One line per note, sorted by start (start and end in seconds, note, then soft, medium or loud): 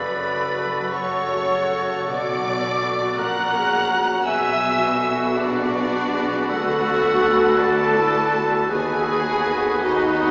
0.00 2.08 F#1 medium
0.00 2.09 F#2 medium
0.00 2.11 F#2 medium
0.00 1.87 C#3 medium
0.00 3.14 A3 medium
0.00 0.14 C#4 medium
0.00 3.98 F#4 medium
0.00 4.21 F#4 medium
0.00 3.15 A4 medium
0.00 0.16 B4 medium
0.00 0.90 B4 medium
0.00 0.92 B4 medium
0.00 0.52 C#5 medium
0.00 0.91 D5 medium
0.00 0.90 B5 loud
0.16 1.67 C#4 medium
0.16 0.54 A4 medium
0.34 1.29 A4 medium
0.53 0.92 G#4 medium
0.53 2.11 C#5 medium
0.73 1.10 F#5 medium
0.92 1.30 F#4 medium
0.92 2.06 C#5 loud
0.92 2.08 C#5 medium
0.92 2.06 F#5 medium
0.92 3.21 A5 medium
0.92 2.09 C#6 loud
1.11 3.00 F#5 medium
1.30 1.69 G#4 medium
1.30 2.63 A4 medium
1.49 3.90 F#4 medium
1.68 2.11 C#4 medium
1.68 2.08 A4 medium
1.88 2.11 C#3 medium
2.07 3.16 B1 medium
2.07 3.21 B2 medium
2.07 3.17 B2 loud
2.07 3.16 F#4 medium
2.07 3.16 D5 loud
2.07 3.17 D5 loud
2.07 2.93 F#5 loud
2.07 3.19 D6 loud
2.27 4.42 F#3 medium
2.46 3.21 B3 medium
2.64 3.21 A4 medium
2.83 3.21 B4 medium
3.01 4.06 F#5 medium
3.18 4.23 A#1 medium
3.18 4.24 A#2 medium
3.18 4.29 A#2 medium
3.18 4.22 C#4 medium
3.18 3.54 A#4 medium
3.18 4.00 A#4 medium
3.18 4.26 F#5 loud
3.18 4.24 F#5 medium
3.18 4.21 A#5 loud
3.18 4.23 F#6 loud
3.37 4.29 A#3 medium
3.54 4.29 C#4 medium
3.54 3.90 G#4 loud
3.73 4.29 C#5 medium
3.90 4.26 F#4 medium
3.90 5.93 F#4 medium
4.24 6.46 B1 loud
4.24 6.53 B2 medium
4.24 6.47 B2 loud
4.24 8.66 B3 medium
4.24 8.66 F#4 medium
4.24 6.47 F#4 medium
4.24 4.61 G#4 medium
4.24 8.66 B4 medium
4.24 5.35 E5 loud
4.24 5.34 G#5 loud
4.24 5.34 E6 loud
4.43 6.30 F#3 medium
4.62 6.13 B3 medium
4.62 4.99 F#4 medium
4.80 5.73 D5 medium
4.98 5.37 A4 loud
4.98 7.03 B4 medium
5.17 5.54 F#5 medium
5.35 6.34 D4 loud
5.35 6.51 D4 medium
5.35 6.51 F#4 loud
5.35 5.75 G#4 medium
5.35 6.50 D5 loud
5.35 8.73 D6 medium
5.56 7.40 F#5 medium
5.74 6.13 F#4 loud
5.74 8.72 D5 medium
5.94 8.14 F#4 medium
6.13 10.04 B3 medium
6.13 6.50 G#4 loud
6.32 10.22 F#3 medium
6.49 8.65 D2 loud
6.49 8.66 D2 loud
6.49 8.72 D3 medium
6.49 7.58 F#4 loud
6.49 7.57 A4 loud
6.49 7.59 A4 loud
6.49 8.67 A4 medium
6.49 7.57 F#5 loud
6.69 8.51 D4 medium
6.86 8.33 A3 medium
7.04 7.96 B4 medium
7.23 9.41 A4 medium
7.42 7.78 F#5 medium
7.58 7.96 F#4 loud
7.58 8.70 A4 loud
7.58 8.71 A4 loud
7.58 8.71 D5 loud
7.58 8.70 A5 loud
7.58 9.81 B5 medium
7.79 9.61 F#5 medium
7.95 8.32 E4 loud
7.95 9.23 B4 medium
8.15 10.31 F#4 medium
8.32 9.05 A3 medium
8.32 8.68 F#4 medium
8.52 8.73 D4 medium
8.69 10.31 D#2 loud
8.69 10.31 D#3 medium
8.69 10.31 B3 loud
8.69 10.31 F#4 medium
8.69 9.82 G#4 loud
8.69 9.80 G#4 loud
8.69 9.56 B4 loud
8.69 10.31 B4 medium
8.69 9.81 G#5 loud
8.88 10.31 D#4 medium
9.06 10.31 A3 medium
9.24 10.23 B4 medium
9.43 10.31 A4 medium
9.62 10.02 F#5 medium
9.81 10.31 D#4 loud
9.81 10.31 F#4 loud
9.81 10.31 D#5 loud
9.81 10.31 B5 medium
10.03 10.31 F#5 medium
10.25 10.31 B4 medium